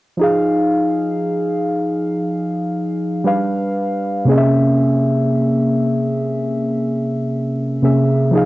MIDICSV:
0, 0, Header, 1, 2, 480
1, 0, Start_track
1, 0, Key_signature, -4, "minor"
1, 0, Tempo, 1016949
1, 92, Time_signature, 4, 2, 24, 8
1, 3990, End_track
2, 0, Start_track
2, 0, Title_t, "Synth keys"
2, 0, Program_c, 0, 88
2, 81, Note_on_c, 0, 53, 69
2, 92, Note_on_c, 0, 63, 63
2, 101, Note_on_c, 0, 68, 65
2, 110, Note_on_c, 0, 77, 76
2, 168, Control_c, 0, 64, 127
2, 1508, Note_off_c, 0, 53, 0
2, 1513, Note_off_c, 0, 63, 0
2, 1518, Note_off_c, 0, 68, 0
2, 1522, Note_off_c, 0, 77, 0
2, 1530, Note_on_c, 0, 55, 69
2, 1534, Note_on_c, 0, 62, 58
2, 1538, Control_c, 0, 64, 0
2, 1540, Note_on_c, 0, 71, 58
2, 1544, Note_on_c, 0, 77, 70
2, 1611, Control_c, 0, 64, 127
2, 2005, Note_on_c, 0, 48, 69
2, 2011, Note_off_c, 0, 55, 0
2, 2012, Note_on_c, 0, 58, 64
2, 2013, Note_off_c, 0, 62, 0
2, 2016, Note_off_c, 0, 71, 0
2, 2018, Note_off_c, 0, 77, 0
2, 2018, Control_c, 0, 64, 0
2, 2019, Note_on_c, 0, 61, 67
2, 2026, Note_on_c, 0, 68, 63
2, 2034, Note_on_c, 0, 75, 62
2, 2056, Note_off_c, 0, 75, 0
2, 2064, Note_on_c, 0, 76, 73
2, 2107, Control_c, 0, 64, 127
2, 3670, Note_off_c, 0, 48, 0
2, 3673, Note_off_c, 0, 58, 0
2, 3677, Note_off_c, 0, 61, 0
2, 3680, Note_off_c, 0, 68, 0
2, 3692, Note_on_c, 0, 48, 54
2, 3694, Note_on_c, 0, 58, 49
2, 3698, Note_on_c, 0, 61, 47
2, 3699, Note_off_c, 0, 76, 0
2, 3702, Note_on_c, 0, 68, 49
2, 3705, Note_on_c, 0, 76, 59
2, 3923, Note_on_c, 0, 53, 74
2, 3932, Note_off_c, 0, 48, 0
2, 3933, Note_off_c, 0, 58, 0
2, 3933, Note_on_c, 0, 63, 67
2, 3935, Note_off_c, 0, 61, 0
2, 3937, Note_off_c, 0, 68, 0
2, 3938, Note_off_c, 0, 76, 0
2, 3939, Control_c, 0, 64, 0
2, 3943, Note_on_c, 0, 68, 66
2, 3953, Note_on_c, 0, 77, 73
2, 3990, Note_off_c, 0, 53, 0
2, 3990, Note_off_c, 0, 63, 0
2, 3990, Note_off_c, 0, 68, 0
2, 3990, Note_off_c, 0, 77, 0
2, 3990, End_track
0, 0, End_of_file